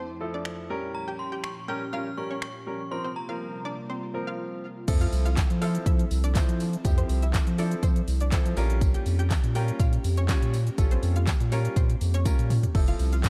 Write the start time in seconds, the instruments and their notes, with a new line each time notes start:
Already playing: analog synth pad F2 F3 A3 E4, synth bell A5
0.20 grand piano F3 E4 A4
0.34 synth pluck D4 D5
0.45 finger snap
0.70 analog synth pad A#2 C#4 G4, grand piano G3 C#4 A#4
0.95 synth bell A#5
1.08 synth pluck G4 G5
1.19 synth bell C6
1.32 synth pluck G4 G5
1.44 synth bell C#6, finger snap
1.68 grand piano G3 C#4 A#4, synth pluck G4 G5, synth bell F6
1.93 grand piano G3 C#4 A#4, synth pluck F4 F5, synth bell F6
2.17 grand piano G3 C#4 A#4, synth bell C#6
2.31 synth pluck C#4 C#5
2.42 synth bell C#6, finger snap
2.66 grand piano G3 C#4 A#4
2.91 analog synth pad C3 G3 A#3 F4, grand piano F3 C4 A#4, synth bell C6
3.04 synth pluck C4 C5
3.16 synth bell A#5
3.28 grand piano F3 C4 A#4, synth pluck F4 F5
3.65 synth pluck D4 D5
3.90 synth pluck C4 C5
4.14 grand piano F3 C4 A#4
4.27 synth pluck F4 F5
4.88 sub bass F2, grand piano F3 C4 E4 A4, analog synth pad F3 C4 E4 A4, kick, closed hi-hat, crash, tambourine, shaker
5.01 synth pluck F4 F5, closed hi-hat, shaker
5.13 sub bass C2, open hi-hat, tambourine, shaker
5.26 synth pluck F4 F5, closed hi-hat, shaker
5.37 kick, snare, clap, closed hi-hat, tambourine, shaker
5.50 sub bass F3, closed hi-hat, shaker
5.61 grand piano F3 C4 E4 A4, synth pluck F4 F5, open hi-hat, tambourine, shaker
5.75 closed hi-hat, shaker
5.86 sub bass F3, synth pluck E4 E5, kick, closed hi-hat, shaker
5.99 closed hi-hat, shaker
6.11 sub bass C2, open hi-hat, tambourine, shaker
6.24 synth pluck D4 D5, closed hi-hat, shaker
6.35 grand piano F3 C4 E4 C5, kick, snare, clap, closed hi-hat, tambourine, shaker
6.49 sub bass F3, closed hi-hat, shaker
6.60 open hi-hat, tambourine, shaker
6.73 closed hi-hat, shaker
6.84 sub bass F2, grand piano F3 C4 E4 G4, kick, closed hi-hat, tambourine, shaker
6.98 synth pluck C4 C5, closed hi-hat, shaker
7.09 sub bass C2, open hi-hat, tambourine, shaker
7.22 synth pluck E4 E5, closed hi-hat, shaker
7.34 kick, snare, clap, closed hi-hat, tambourine, shaker
7.47 sub bass F3, closed hi-hat, shaker
7.58 grand piano F3 C4 E4 A4, synth pluck D4 D5, open hi-hat, tambourine, shaker
7.71 closed hi-hat, shaker
7.83 sub bass F3, synth pluck C4 C5, kick, closed hi-hat, tambourine, shaker
7.96 closed hi-hat, shaker
8.08 sub bass C2, open hi-hat, tambourine, shaker
8.20 synth pluck D4 D5, closed hi-hat, shaker
8.32 grand piano F3 C4 E4 A4, kick, snare, clap, closed hi-hat, tambourine, shaker
8.45 sub bass F3, closed hi-hat, shaker
8.57 sub bass A#1, grand piano G3 C#4 F4 A#4, analog synth pad A#3 C#4 G4, open hi-hat, tambourine, shaker
8.70 closed hi-hat, shaker
8.81 kick, closed hi-hat, tambourine, shaker
8.94 synth pluck G4 G5, closed hi-hat, shaker
9.06 sub bass F2, open hi-hat, tambourine, shaker
9.19 synth pluck G4 G5, closed hi-hat, shaker
9.31 kick, snare, clap, closed hi-hat, tambourine, shaker
9.44 sub bass A#2, closed hi-hat, shaker
9.55 grand piano G3 C#4 F4 A#4, synth pluck G4 G5, open hi-hat, shaker
9.68 closed hi-hat, shaker
9.80 sub bass A#2, synth pluck F4 F5, kick, closed hi-hat, tambourine, shaker
9.93 closed hi-hat, shaker
10.04 sub bass F2, open hi-hat, tambourine, shaker
10.17 synth pluck C#4 C#5, closed hi-hat, shaker
10.29 grand piano G3 C#4 F4 C#5, kick, snare, clap, closed hi-hat, tambourine, shaker
10.42 sub bass A#2, closed hi-hat, shaker
10.53 open hi-hat, tambourine, shaker
10.67 closed hi-hat, shaker
10.78 sub bass A#1, grand piano G3 C#4 F4 A4, kick, closed hi-hat, tambourine, shaker
10.91 synth pluck C4 C5, closed hi-hat, shaker
11.03 sub bass F2, open hi-hat, tambourine, shaker
11.16 synth pluck F4 F5, closed hi-hat, shaker
11.27 kick, snare, clap, closed hi-hat, tambourine, shaker
11.40 sub bass A#2, closed hi-hat, shaker
11.52 grand piano G3 C#4 F4 A#4, synth pluck C#4 C#5, open hi-hat, tambourine, shaker
11.65 closed hi-hat, shaker
11.76 sub bass A#2, synth pluck C4 C5, kick, closed hi-hat, tambourine, shaker
11.90 closed hi-hat, shaker
12.01 sub bass F2, open hi-hat, tambourine, shaker
12.14 synth pluck C#4 C#5, closed hi-hat, shaker
12.25 grand piano G3 C#4 F4 A#4, kick, closed hi-hat, high tom, tambourine, shaker
12.39 sub bass A#2, closed hi-hat, shaker
12.50 mid tom, open hi-hat, tambourine, shaker
12.63 closed hi-hat, floor tom, shaker
12.75 sub bass F1, grand piano F3 C4 E4 A4, analog synth pad F3 C4 E4 A4, kick, crash, tambourine
12.88 synth pluck F4 F5, closed hi-hat, shaker
12.99 sub bass C2, open hi-hat, tambourine, shaker
13.12 synth pluck F4 F5, closed hi-hat, shaker
13.24 kick, snare, clap, closed hi-hat, tambourine, shaker